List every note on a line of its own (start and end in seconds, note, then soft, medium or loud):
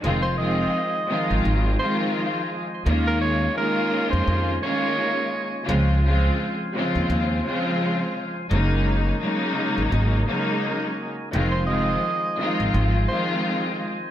0.02 0.64 F1 loud
0.02 0.35 D#3 medium
0.02 0.36 F3 medium
0.02 0.37 G#3 medium
0.02 0.37 C4 medium
0.02 8.47 F4 medium
0.02 0.37 F4 loud
0.02 2.83 C5 medium
0.02 2.83 D#5 medium
0.02 11.29 G#5 medium
0.22 0.36 C5 medium
0.37 0.89 D#3 medium
0.37 0.89 F3 medium
0.37 0.89 G#3 medium
0.37 0.90 C4 loud
0.37 0.90 F4 loud
0.37 1.40 D#5 medium
1.07 1.74 D#3 loud
1.07 1.75 F3 medium
1.07 1.75 G#3 medium
1.07 1.75 C4 medium
1.07 1.76 F4 loud
1.31 1.43 G#1 medium
1.45 1.75 G#1 medium
1.78 2.62 D#3 loud
1.78 2.62 F3 medium
1.78 2.63 G#3 loud
1.78 2.63 C4 medium
1.78 2.64 F4 loud
1.78 1.98 C5 medium
2.84 3.46 D#2 loud
2.84 3.51 D#3 loud
2.84 3.51 G#3 medium
2.84 3.52 A#3 loud
2.84 5.65 C#4 medium
2.84 3.52 C#4 medium
2.84 3.53 F4 loud
2.84 5.66 D#5 medium
3.07 3.20 A#4 medium
3.21 3.53 C#5 medium
3.55 4.54 D#3 loud
3.55 4.55 G#3 loud
3.55 4.55 A#3 loud
3.55 4.56 C#4 loud
3.55 4.56 F4 loud
3.55 4.10 A#4 medium
4.10 4.25 F2 medium
4.10 4.58 C5 medium
4.27 4.57 F2 medium
4.61 5.45 D#3 loud
4.61 5.45 G#3 loud
4.61 5.45 A#3 loud
4.61 5.46 C#4 loud
4.61 5.46 F4 loud
4.61 5.65 C#5 medium
5.65 6.29 C#2 loud
5.65 5.99 C#3 loud
5.65 6.00 F3 loud
5.65 6.00 G#3 medium
5.65 6.01 C4 medium
5.65 6.01 F4 loud
5.65 8.48 C5 medium
5.65 8.48 F5 medium
6.03 6.54 C#3 loud
6.03 6.55 F3 medium
6.03 6.55 G#3 medium
6.03 6.56 C4 loud
6.03 6.56 F4 loud
6.74 7.40 C#3 loud
6.74 7.40 F3 medium
6.74 7.40 G#3 medium
6.74 7.41 C4 medium
6.74 7.41 F4 loud
6.95 7.07 D#2 medium
7.10 7.40 D#2 loud
7.43 8.27 C#3 loud
7.43 8.27 F3 loud
7.43 8.28 G#3 medium
7.43 8.28 C4 loud
7.43 8.28 F4 loud
8.49 9.11 F#1 loud
8.49 9.16 C#3 loud
8.49 9.16 F#3 medium
8.49 9.16 G#3 medium
8.49 9.17 A#3 medium
8.49 9.17 D#4 loud
8.49 11.30 F#4 medium
8.49 11.30 A#4 medium
8.49 11.30 D#5 medium
9.19 10.19 C#3 loud
9.19 10.19 F#3 loud
9.19 10.20 G#3 medium
9.19 10.20 A#3 loud
9.19 10.21 D#4 loud
9.78 9.90 G#1 medium
9.92 10.22 G#1 loud
10.25 11.09 C#3 loud
10.25 11.09 F#3 medium
10.25 11.10 G#3 medium
10.25 11.10 A#3 loud
10.25 11.11 D#4 loud
11.32 11.93 F1 loud
11.32 11.65 D#3 loud
11.32 11.66 F3 medium
11.32 11.66 G#3 loud
11.32 11.66 C4 medium
11.32 14.11 F4 medium
11.32 11.67 F4 loud
11.32 14.11 C5 medium
11.32 14.11 D#5 medium
11.32 14.11 G#5 medium
11.52 11.66 C5 medium
11.66 12.18 D#3 medium
11.66 12.19 F3 medium
11.66 12.19 G#3 medium
11.66 12.19 C4 medium
11.66 12.20 F4 loud
11.66 12.69 D#5 medium
12.37 13.04 D#3 loud
12.37 13.04 F3 medium
12.37 13.04 G#3 medium
12.37 13.05 C4 medium
12.37 13.05 F4 loud
12.60 12.72 G#1 medium
12.74 13.04 G#1 loud
13.08 13.91 D#3 loud
13.08 13.92 F3 medium
13.08 13.92 G#3 loud
13.08 13.93 C4 medium
13.08 13.93 F4 loud
13.08 13.28 C5 medium